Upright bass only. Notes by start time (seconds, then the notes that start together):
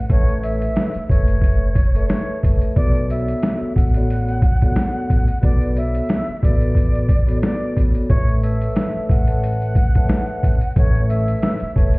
0.10 A1
0.95 muted upright bass stroke
1.10 F#1
2.43 F#1
2.77 B1
3.62 muted upright bass stroke
3.76 A1
5.10 A1
5.43 B1
6.29 muted upright bass stroke
6.43 A1
7.77 A1
8.10 A1
8.95 muted upright bass stroke
9.10 A1
10.43 A1
10.76 A1
11.62 muted upright bass stroke
11.76 F#1